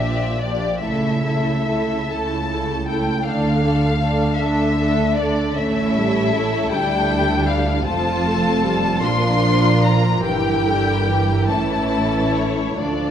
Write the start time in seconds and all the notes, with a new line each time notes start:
Already playing: A#1 A#2 E5
0.01 F3 D4 G4 D5
0.40 F3 D4 G4 D5
0.80 C#2 C#3 A3 E4 A4 E5
1.23 A3 E4 A4
1.67 A3 E4 A4
2.10 C#2 C#3 A3 E4 A4 A5
2.50 A3 E4 A4
2.88 A3 E4 A4 G5
3.26 D2 D3 A3 D4 A4 F5
3.64 A3 D4 A4
4.01 A3 D4 A4
4.38 D2 D3 A3 D4 A4 E5
4.78 A3 D4 A4
5.16 A3 D4 A4 D5
5.55 A1 A2 A3 C#4 E4 A4 E5
5.95 G3
6.33 A3
6.70 D2 G3 D4 G5
7.48 F5
7.86 F1 F2 F3 C4 F4 A4 A5
8.25 A3
8.63 G3
9.02 A#1 A#2 F3 D4 F4 A#4 C6
9.85 A#5
10.24 G1 G2 E3 E4 G4 A#4 G5
10.66 D3
11.06 E3
11.48 A1 A2 C#4 E4 A4 A5
12.34 C#5
12.78 D2 F3 D4 A4 D5